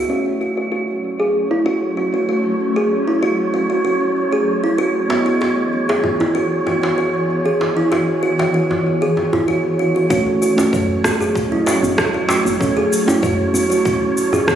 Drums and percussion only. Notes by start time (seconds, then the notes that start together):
5.10 djembe slap
5.42 djembe slap
5.89 djembe slap
6.04 djembe bass
6.21 djembe tone
6.67 djembe tone
6.83 djembe slap
7.61 djembe slap
7.91 djembe slap, djembe tone
8.39 djembe slap
8.71 djembe tone
9.17 djembe tone
9.33 djembe bass
10.10 kick, shaker
10.27 djembe tone
10.42 shaker
10.58 djembe slap, djembe tone, shaker
10.73 kick, shaker
11.04 cross-stick, djembe bass, shaker
11.21 shaker
11.35 kick, shaker
11.67 djembe slap, djembe tone, shaker
11.84 shaker
11.98 kick, cross-stick, shaker
12.15 djembe tone
12.29 djembe slap, djembe tone, shaker
12.47 shaker
12.61 kick, shaker
12.77 djembe tone
12.93 shaker
13.08 djembe slap, djembe tone, shaker
13.23 kick, shaker
13.55 shaker
13.72 shaker
13.85 kick, shaker
14.17 shaker
14.33 djembe bass, shaker
14.48 kick, cross-stick, shaker